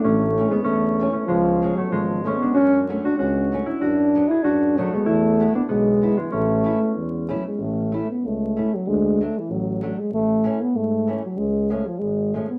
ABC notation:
X:1
M:2/4
L:1/16
Q:"Swing" 1/4=96
K:A
V:1 name="Harp"
C3 B, C3 C | G,3 A, G,2 C D | F3 F F2 z E | F3 G F2 A, B, |
E3 D B,3 G, | C4 z4 | z8 | z8 |
z8 | z8 |]
V:2 name="Euphonium"
A,3 G, A,3 A, | ^E,3 F, E,2 A, B, | C3 D C2 z C | D3 E D2 F, G, |
A,3 B, G,3 E, | A,4 z2 F, G, | A,3 B, A,3 F, | G,2 A, E, F,2 F, G, |
A,3 B, A,3 F, | G,2 A, ^E, G,2 A, B, |]
V:3 name="Steel-string acoustic guitar"
z2 [E,A,C]2 z2 [E,A,C]2 | z2 [^E,G,C]2 z2 [E,G,C]2 | z2 [F,A,C]2 z2 [F,A,C]2 | z2 [F,B,D]2 z2 [F,B,D]2 |
z2 [G,B,E]2 z2 [G,B,E]2 | z2 [A,CE]2 z2 [A,CE]2 | z2 [A,CE]2 z2 [A,CE]2 | z2 [F,A,D]2 z2 [F,A,D]2 |
z2 [E,A,C]2 z2 [E,A,C]2 | z2 [^E,G,C]2 z2 [E,G,C]2 |]
V:4 name="Tuba" clef=bass
A,,,4 E,,4 | C,,4 G,,,4 | F,,4 C,,4 | F,,4 F,,4 |
E,,4 B,,,4 | A,,,4 E,,4 | A,,,4 C,,4 | D,,4 A,,,4 |
A,,,4 G,,4 | C,,4 G,,,4 |]